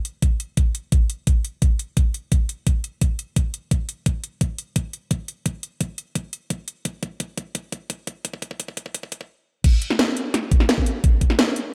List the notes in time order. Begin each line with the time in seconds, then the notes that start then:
0.05 closed hi-hat
0.22 kick, closed hi-hat
0.40 closed hi-hat
0.57 kick, closed hi-hat
0.75 closed hi-hat
0.92 kick, closed hi-hat
1.10 closed hi-hat
1.27 kick, closed hi-hat
1.45 closed hi-hat
1.62 kick, closed hi-hat
1.79 closed hi-hat
1.97 kick, closed hi-hat
2.14 closed hi-hat
2.32 kick, closed hi-hat
2.49 closed hi-hat
2.67 kick, closed hi-hat
2.84 closed hi-hat
3.01 kick, closed hi-hat
3.19 closed hi-hat
3.36 kick, closed hi-hat
3.54 closed hi-hat
3.71 kick, closed hi-hat
3.89 closed hi-hat
4.06 kick, closed hi-hat
4.24 closed hi-hat
4.41 kick, closed hi-hat
4.58 closed hi-hat
4.76 kick, closed hi-hat
4.93 closed hi-hat
5.11 kick, closed hi-hat
5.28 closed hi-hat
5.46 kick, closed hi-hat
5.63 closed hi-hat
5.81 kick, closed hi-hat
5.98 closed hi-hat
6.15 kick, closed hi-hat
6.33 closed hi-hat
6.50 kick, closed hi-hat
6.68 closed hi-hat
6.85 kick, closed hi-hat
7.03 kick, closed hi-hat
7.20 kick, closed hi-hat
7.38 kick, closed hi-hat
7.55 kick, closed hi-hat
7.72 kick, closed hi-hat
7.90 kick, closed hi-hat
8.07 kick, closed hi-hat
8.25 kick, closed hi-hat
8.33 kick
8.42 kick, closed hi-hat
8.51 kick
8.60 kick, closed hi-hat
8.68 kick
8.77 kick, closed hi-hat
8.86 kick
8.94 kick, closed hi-hat
9.03 kick
9.12 kick, closed hi-hat
9.21 kick
9.64 kick, closed hi-hat, crash
9.82 closed hi-hat
9.90 snare
9.99 snare, closed hi-hat
10.17 closed hi-hat
10.34 snare, closed hi-hat
10.51 kick, closed hi-hat
10.60 snare
10.69 snare, closed hi-hat
10.78 kick
10.86 closed hi-hat
11.04 kick, closed hi-hat
11.21 kick, closed hi-hat
11.30 snare
11.39 snare, closed hi-hat
11.56 closed hi-hat